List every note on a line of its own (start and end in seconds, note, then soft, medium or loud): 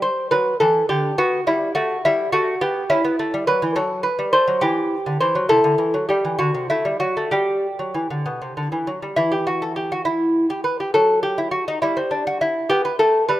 0.02 0.30 C5 medium
0.31 0.53 F#3 medium
0.31 0.59 B4 medium
0.60 0.82 E3 medium
0.60 0.88 A4 medium
0.89 1.10 D3 medium
0.89 1.17 G4 medium
1.18 1.39 B3 medium
1.18 1.46 F#4 medium
1.47 1.68 G3 medium
1.47 1.74 E4 medium
1.75 1.96 A3 medium
1.75 2.03 F#4 medium
2.05 2.26 G3 medium
2.05 2.32 E4 medium
2.32 2.54 A3 medium
2.32 2.61 F#4 medium
2.61 2.82 B3 medium
2.61 2.89 G4 medium
2.90 3.04 C#4 medium
2.90 3.45 E4 medium
3.04 3.19 B3 medium
3.19 3.33 A3 medium
3.34 3.47 G3 medium
3.47 3.62 F#3 medium
3.47 3.75 B4 medium
3.62 3.76 E3 medium
3.76 4.07 F#3 medium
3.76 4.03 A4 medium
4.03 4.32 B4 medium
4.19 4.33 G3 medium
4.33 4.47 A3 medium
4.33 4.61 C5 medium
4.48 4.62 F#3 medium
4.61 4.94 E3 medium
4.61 5.18 G4 medium
5.06 5.20 D3 medium
5.20 5.35 E3 medium
5.20 5.49 C5 medium
5.35 5.49 F#3 medium
5.49 5.64 C3 medium
5.49 6.34 E4 soft
5.49 6.06 A4 medium
5.64 5.78 D3 medium
5.78 5.93 E3 medium
5.94 6.08 F#3 medium
6.09 6.24 G3 medium
6.09 6.38 G4 medium
6.25 6.39 E3 medium
6.39 6.54 D3 medium
6.39 6.68 F#4 medium
6.54 6.69 C3 medium
6.70 6.84 A3 medium
6.70 6.99 E4 medium
6.85 6.99 G3 medium
7.00 7.15 F#3 soft
7.00 7.30 F#4 medium
7.17 7.31 A3 medium
7.31 7.66 G3 medium
7.31 8.84 G4 medium
7.79 7.94 F#3 soft
7.94 8.09 E3 soft
8.10 8.25 D3 soft
8.26 8.40 B2 medium
8.42 8.56 C3 soft
8.57 8.72 D3 soft
8.72 8.87 E3 soft
8.87 9.02 F#3 medium
9.02 9.17 G3 soft
9.16 10.45 E3 medium
9.16 9.32 E4 medium
9.32 9.47 G4 medium
9.47 9.62 F#4 medium
9.62 9.76 A4 medium
9.76 9.91 G4 medium
9.92 10.05 F#4 medium
10.05 10.48 E4 medium
10.50 10.64 G4 medium
10.64 10.79 B4 medium
10.80 10.94 G4 medium
10.94 11.59 F#3 medium
10.94 11.22 A4 medium
11.23 11.39 G4 medium
11.38 11.51 E4 medium
11.51 11.67 F#4 medium
11.68 11.81 D#4 medium
11.82 12.46 G3 medium
11.82 11.97 E4 medium
11.97 12.12 C4 medium
12.11 12.26 D4 medium
12.27 12.41 F#4 medium
12.41 12.69 E4 medium
12.69 12.91 B3 medium
12.69 12.84 G4 medium
12.85 12.99 B4 medium
12.99 13.21 A3 medium
12.99 13.27 A4 medium
13.29 13.40 G3 medium
13.29 13.40 B4 medium